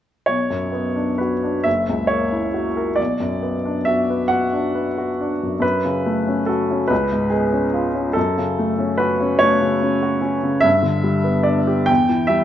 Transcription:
0.26 B1 C#5
0.50 F#2
0.72 B3
0.96 D4
1.18 F#4 B4
1.43 D4
1.64 F#1 E5
1.89 C#2
2.07 A#3 C#5
2.33 E4
2.54 F#4
2.76 A#4
2.96 B1 D5
3.20 F#2
3.43 B3
3.65 D4
3.85 F#4 E5
4.10 B4
4.28 F#4 F#5
4.53 D4
4.75 B4
4.98 F#4
5.21 D4
5.43 F#2
5.60 F#2 B4
5.85 C#3
6.06 A3
6.28 C#4
6.46 F#4 A4
6.71 C#4
6.88 C#2 B4
7.12 G#2
7.30 B3 G#4
7.53 C#4
7.74 F4
7.94 C#4
8.13 F#2 A4
8.38 C#3
8.59 A3
8.79 C#4
8.98 F#4 B4
9.21 C#4
9.39 A3 C#5
9.61 C#3
9.82 C#4
10.02 F#4
10.22 C#4
10.43 C#3
10.60 G2 E5
10.82 D3
11.03 G3
11.24 B3
11.43 D4 D5
11.67 G4
11.86 E2 G5
12.09 E3
12.27 G3 E5

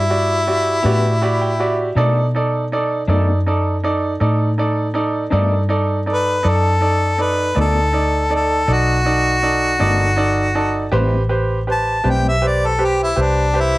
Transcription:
Already playing: G2 E4
0.10 F#4 G4 D5
0.47 F#4 G4 D5
0.83 A2 E3 B3 D4 F#4 G4 D5
1.22 F#4 G4 D5 B5
1.41 G5
1.60 F#4 G4 D5 E5
1.95 B2 D#3 A3 D4 D#4 A4 D5
2.35 D#4 A4 D5
2.72 D#4 A4 D5
3.08 F#2 B2 D#3 A3 D4 D#4 A4 D5
3.46 D#4 A4 D5
3.83 D#4 A4 D5
4.20 A2 D#4 A4 D5
4.58 D#4 A4 D5
4.94 D#4 A4 D5
5.30 G2 B2 D#3 A3 D4 D#4 A4 D5
5.69 D#4 A4 D5
6.06 D#4 A4 D5
6.13 B4
6.43 F#2 D#4 A4 D5
6.49 A4
6.81 D#4 A4 D5
7.18 D#4 A4 B4 D5
7.55 D2 B2 D#3 A3 D4 D#4 A4 D5
7.60 A4
7.93 D#4 A4 D5
8.30 D#4 A4 D5
8.36 A4
8.68 B1 D#4 A4 D5
8.73 F#4
9.05 D#4 A4 D5
9.43 D#4 A4 D5
9.79 G1 B2 D#3 A3 D4 D#4 A4 D5
10.16 D#4 A4 D5
10.55 D#4 A4 D5 A5
10.92 A1 A2 G3 C4 E4 G4 B4 C5
11.29 G4 B4 C5
11.67 G4 B4 C5
11.72 A5
12.04 B1 A2 G3 C4 E4 G4 B4 C5
12.10 G5
12.29 E5
12.42 G4 B4 C5
12.47 D5
12.67 A4
12.79 G4 B4 C5
12.85 G4
13.03 E4
13.16 C2 G4 B4 C5
13.21 D4
13.54 G4 B4 C5
13.60 E4

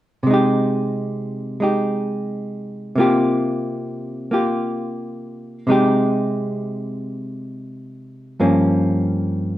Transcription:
0.23 C3 G#3
0.30 D#4 G4
1.60 G#3 D#4 G4
2.96 C3 A#3 F4
3.00 G4
4.31 A#3 F4 G4
5.67 C3 G#3 D#4
5.72 G4
8.40 G2 F3 A#3 C#4

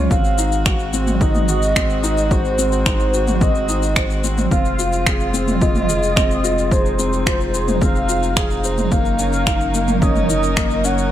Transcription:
Already playing: C#4 D#4 F4
0.11 G#1 G#3 C4 F#4 F5, kick, shaker
0.24 shaker
0.38 D#4, shaker
0.52 shaker
0.66 F#4, finger snap, kick, shaker
0.80 shaker
0.93 C4, shaker
1.07 mid tom, shaker
1.21 D#4 D#5, kick, shaker
1.35 mid tom, shaker
1.48 F#4, shaker
1.62 shaker
1.76 C4, finger snap, kick, shaker
1.90 shaker
2.03 D#4, shaker
2.18 shaker
2.31 F#4 C5, kick, shaker
2.45 shaker
2.59 C4, shaker
2.72 shaker
2.86 D#4, finger snap, kick, shaker
3.00 shaker
3.14 F#4, shaker
3.28 mid tom, shaker
3.41 C4 D#5, kick, shaker
3.55 shaker
3.69 D#4, shaker
3.83 shaker
3.96 C5, finger snap, kick, shaker
4.10 shaker
4.24 C4, shaker
4.38 mid tom, shaker
4.51 F1 G#3 C4 F4 F5, kick, shaker
4.65 shaker
4.79 F4, shaker
4.93 shaker
5.06 G#4, finger snap, kick, shaker
5.20 shaker
5.34 C4, shaker
5.48 mid tom, shaker
5.61 F4 D#5, kick, shaker
5.75 mid tom, shaker
5.89 G#4, shaker
6.03 shaker
6.16 C4, finger snap, kick, shaker
6.31 shaker
6.44 F4, shaker
6.58 shaker
6.71 D#4 G#4 C5, kick, shaker
6.86 shaker
6.99 C4, shaker
7.13 shaker
7.26 F4, finger snap, kick, shaker
7.41 shaker
7.54 G#4, shaker
7.68 mid tom, shaker
7.81 C4 F5, kick, shaker
7.96 shaker
8.09 F4, shaker
8.23 shaker
8.36 G#4, finger snap, kick, shaker
8.51 shaker
8.64 C5, shaker
8.78 mid tom, shaker
8.91 F#1 F#3 A#3 C#4 A#4 F5, kick, shaker
9.05 shaker
9.19 C#4, shaker
9.33 shaker
9.47 D#4, finger snap, kick, shaker
9.61 shaker
9.74 A#3, shaker
9.88 mid tom, shaker
10.02 C#4 D#5, kick, shaker
10.16 mid tom, shaker
10.29 D#4, shaker
10.43 shaker
10.57 A#3, finger snap, kick, shaker
10.71 shaker
10.84 C#4 F#5, shaker
10.98 shaker

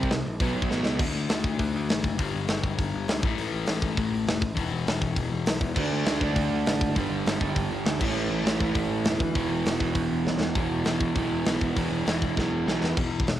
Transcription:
Already playing: G3 C4
0.03 kick
0.10 C2 C3 G3, snare, open hi-hat
0.25 A#1
0.40 B1 B2 F#3 B3, kick, open hi-hat
0.55 B1
0.62 kick
0.71 A1 B2 F#3 B3, snare
0.85 C#2, snare
0.99 D2 D3 A3 D4, kick, crash
1.15 D2
1.29 D2, snare, open hi-hat
1.44 kick
1.59 D2, kick, open hi-hat
1.74 D2
1.89 A1, snare, open hi-hat
2.04 F#1, kick
2.17 G1 G2 D3 G3, kick, open hi-hat
2.34 G1
2.48 G1, snare, open hi-hat
2.64 kick
2.78 G1, kick, open hi-hat
2.94 G1
3.08 D2, snare, open hi-hat
3.22 A1 A2 E3 A3, kick
3.38 A1, open hi-hat
3.53 A1
3.66 A1, snare, open hi-hat
3.82 kick
3.97 A1, kick, open hi-hat
4.10 A1
4.26 E1, snare, open hi-hat
4.41 A1, kick
4.55 E1 E2 B2 E3, kick, open hi-hat
4.72 E1
4.86 E1, snare, open hi-hat
5.02 kick
5.16 E1, kick, open hi-hat
5.32 E1
5.46 B1, snare, open hi-hat
5.61 E2, kick
5.75 D2 D3 A3 D4, kick, crash
5.92 D2
6.05 D2, snare, open hi-hat
6.20 D3 A3 D4, kick
6.36 D2, kick, open hi-hat
6.50 D2
6.66 A1, snare, open hi-hat
6.81 F#1, kick
6.95 G1 G2 D3 G3, kick, open hi-hat
7.10 G1
7.25 G1, snare, open hi-hat
7.41 G2 D3 G3, kick
7.56 G1, kick, open hi-hat
7.71 G1
7.85 D2, snare, open hi-hat
7.99 A1 A2 E3 A3, kick, crash
8.15 A1
8.30 A1
8.44 A1 A2 E3, snare, open hi-hat
8.49 A3
8.61 kick
8.75 A1, kick, open hi-hat
8.90 A1
9.05 E1, snare, open hi-hat
9.19 D2, kick
9.35 E1 E2 B2 E3, kick, open hi-hat
9.50 E1
9.64 E1, snare, open hi-hat
9.80 E2 B2 E3, kick
9.95 E1, kick, open hi-hat
10.11 E1
10.25 B1, snare
10.40 E1, snare
10.55 E1 E2 B2 E3, kick, open hi-hat
10.72 E1
10.85 E1 E2 B2 E3, snare, open hi-hat
11.01 kick
11.15 B1 E2 B2 E3, kick, open hi-hat
11.31 E1
11.45 B1 E2 B2 E3, snare, open hi-hat
11.61 E1, kick
11.75 E1 E2 B2 E3, kick, open hi-hat
11.90 E1
12.06 E1 E2 B2 E3, snare, open hi-hat
12.22 kick
12.35 B1 E2 B2 E3, kick, snare
12.52 E1
12.66 B1 E2 B2 E3, snare
12.82 E1, snare
12.96 E1 E2 B2 E3, kick, crash
13.11 E1
13.20 kick
13.27 E1 E2 B2, snare, open hi-hat

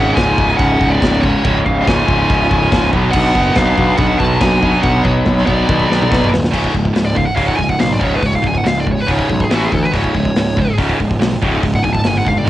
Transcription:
Already playing: G#1 C#2 G#2 C#3 C#4 F#5
0.15 C#1 F4 G#5, kick, snare, china
0.38 C#1 C#2 G#2 C#3, kick
0.57 C#1 C#4 F#5, kick, china
0.81 C#1, kick
0.90 B3 D5
1.02 C#1, kick, snare, china
1.22 G#3 C#5, kick
1.43 C#1 C#2 G#2 C#3, kick, china
1.66 C#1 C#4 F5, kick
1.87 C#1 F4 G#5, kick, snare, china
2.07 C#1 C#2 G#2 C#3, kick
2.30 C#1, kick, china
2.51 C#1, kick
2.72 C#1, kick, snare, china
2.92 B1 B2 F#3 B3, kick
3.12 B1 D4 F#5, kick, china, crash
3.35 F#1, kick
3.55 B1 B2 F#3 D4 F5, kick, snare, china
3.60 B3
3.78 B1, kick
3.96 B1 D4 F#5, kick, china
4.19 B1 F#4 A5, kick
4.41 B1 D4 G#5, kick, snare, china
4.62 B2 F#3 B3, kick
4.82 B1 D4 F#5, kick, china
5.04 B1 F#3 C#5, kick
5.25 B1 B2 F#3 B3, kick, snare, china
5.45 B1 B3 D5, kick
5.69 B1, kick, high tom
5.80 kick
5.90 B1, snare
6.02 mid tom
6.12 B1, kick, snare
6.24 mid tom
6.34 D1, snare
6.44 snare
6.53 C#1 C#2 G#2 C#3, kick, crash
6.64 kick
6.74 C#1 C#2 G#2, kick
6.85 kick
6.95 C#1 C#2 G#2, snare, open hi-hat
7.05 D5
7.15 C#2 G#2 F5, kick
7.26 F#5
7.36 C#1 C#2 G#2 C#3 F5, kick, open hi-hat
7.47 F#5, kick
7.56 C#1 C#2 G#2 G#5, kick
7.69 F#5, kick
7.79 B1 C#2 G#2 F5, snare, open hi-hat
7.93 D5
7.99 C#1 C#2 G#2 C#3, kick
8.04 C#5
8.16 B4
8.21 C#1 C#2 G#2, kick, open hi-hat
8.25 C#5
8.33 F5, kick
8.43 C#1 C#2 G#2, kick
8.48 G#5
8.55 F#5, kick
8.64 C#1 C#2 G#2 F5, snare, open hi-hat
8.80 D5
8.86 C#2 G#2, kick
8.92 C#5
9.01 B4
9.07 C#1 C#2 G#2 C#3 C#5, kick, open hi-hat
9.19 kick
9.29 B1 C#2 G#2, kick
9.40 G#4, kick
9.51 A1 A2 E3 A3 F#4, snare, open hi-hat
9.65 G#4
9.70 D2 A2 E3, kick
9.74 E3 A4
9.85 B4
9.94 C#1 C#2 G#2 C#3 C#5, kick, open hi-hat
10.04 kick
10.15 C#1 C#2 G#2, kick
10.25 kick
10.36 C#1 C#2 G#2, snare, open hi-hat
10.57 C#2 G#2, kick
10.78 C#1 C#2 G#2 C#3, kick, open hi-hat
10.90 kick
11.00 C#1 C#2 G#2, kick
11.11 kick
11.21 B1 C#2 G#2, snare, open hi-hat
11.43 C#1 C#2 G#2 C#3, kick
11.63 C#1 C#2 G#2, kick, open hi-hat
11.74 F#5, kick
11.84 C#1 C#2 G#2 G#5, kick
11.93 A5, kick
12.04 G1 C#2 G#2 G#5, snare, open hi-hat
12.18 F#5
12.26 C#2 G#2 F5, kick
12.38 D5
12.44 G#2 D#3 G#3

